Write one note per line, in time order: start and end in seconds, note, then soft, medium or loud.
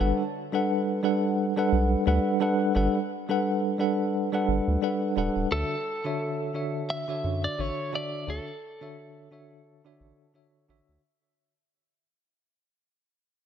0.00 0.12 G1 loud
0.00 0.21 G3 medium
0.00 0.22 D4 medium
0.00 0.22 A4 medium
0.00 0.22 B4 medium
0.00 0.22 F#5 medium
0.53 0.99 G3 medium
0.53 0.99 D4 medium
0.53 1.00 A4 medium
0.53 1.00 B4 medium
0.53 1.00 F#5 medium
1.03 1.52 G3 medium
1.03 1.53 D4 medium
1.03 1.53 A4 medium
1.03 1.53 B4 medium
1.03 1.53 F#5 medium
1.56 2.03 G3 medium
1.56 2.03 D4 medium
1.56 2.03 A4 medium
1.56 2.04 B4 medium
1.56 2.04 F#5 loud
1.72 1.95 B1 medium
2.06 2.19 D2 loud
2.06 2.37 G3 medium
2.06 2.38 D4 medium
2.06 2.38 A4 medium
2.06 2.38 B4 medium
2.06 2.38 F#5 medium
2.40 2.71 G3 medium
2.40 2.72 D4 medium
2.40 2.72 A4 medium
2.40 2.72 B4 medium
2.40 2.73 F#5 loud
2.75 2.88 G1 loud
2.75 2.97 G3 medium
2.75 2.98 D4 medium
2.75 2.98 A4 medium
2.75 2.98 B4 medium
2.75 2.98 F#5 medium
3.29 3.75 G3 medium
3.29 3.76 D4 medium
3.29 3.76 A4 medium
3.29 3.76 B4 medium
3.29 3.76 F#5 medium
3.78 4.28 G3 medium
3.78 4.28 D4 medium
3.78 4.29 A4 medium
3.78 4.29 B4 medium
3.78 4.29 F#5 medium
4.32 4.79 G3 medium
4.32 4.79 D4 medium
4.32 4.79 A4 medium
4.32 4.80 B4 medium
4.32 4.80 F#5 loud
4.48 4.60 G1 medium
4.67 4.77 D2 loud
4.82 5.13 G3 medium
4.82 5.13 D4 medium
4.82 5.14 A4 medium
4.82 5.14 B4 medium
4.82 5.14 F#5 medium
5.16 5.29 D1 loud
5.16 5.47 G3 medium
5.16 5.48 D4 medium
5.16 5.48 A4 medium
5.16 5.48 B4 medium
5.16 5.49 F#5 loud
5.36 5.46 D1 loud
5.51 5.64 D2 medium
5.51 5.73 D3 medium
5.51 5.74 D4 medium
5.51 5.74 F#4 medium
5.51 6.94 A4 loud
5.51 5.74 C#5 medium
5.51 5.74 E5 medium
6.04 6.51 D3 medium
6.04 6.51 D4 medium
6.04 6.51 F#4 medium
6.04 6.52 C#5 medium
6.04 6.52 E5 medium
6.54 7.04 D3 medium
6.54 7.04 D4 medium
6.54 7.04 F#4 medium
6.54 7.04 C#5 medium
6.54 7.05 E5 medium
6.90 7.44 E5 loud
7.08 7.54 D3 medium
7.08 7.55 D4 medium
7.08 7.55 F#4 medium
7.08 7.55 C#5 medium
7.08 7.55 E5 medium
7.24 7.47 F#2 medium
7.44 7.60 D5 loud
7.58 7.71 A1 loud
7.58 7.89 D3 medium
7.58 7.90 D4 medium
7.58 7.90 F#4 medium
7.58 7.90 C#5 medium
7.58 7.95 C#5 loud
7.58 7.90 E5 medium
7.92 8.23 D3 medium
7.92 8.24 D4 medium
7.92 8.24 F#4 medium
7.92 8.24 D5 medium
7.92 8.30 D5 loud
7.92 8.25 E5 loud
8.27 8.40 D2 medium
8.27 8.49 D3 medium
8.27 8.50 D4 medium
8.27 8.50 F#4 medium
8.27 10.32 A4 medium
8.27 8.50 C#5 medium
8.27 8.50 E5 medium
8.81 9.27 D3 medium
8.81 9.27 D4 medium
8.81 9.28 F#4 medium
8.81 9.28 C#5 medium
8.81 9.28 E5 medium
9.31 9.80 D3 medium
9.31 9.80 D4 medium
9.31 9.81 F#4 medium
9.31 9.81 C#5 medium
9.31 9.81 E5 medium
9.84 10.31 D3 medium
9.84 10.31 D4 medium
9.84 10.31 F#4 medium
9.84 10.31 C#5 medium
9.84 10.32 E5 medium
10.00 10.12 A1 loud
10.34 10.65 D3 medium
10.34 10.65 D4 medium
10.34 10.66 F#4 medium
10.34 10.66 C#5 medium
10.34 10.66 E5 medium
10.68 10.81 A1 loud
10.68 10.99 D3 medium
10.68 11.00 D4 medium
10.68 11.00 F#4 medium
10.68 11.00 C#5 medium
10.68 11.00 E5 loud
10.88 10.98 D2 loud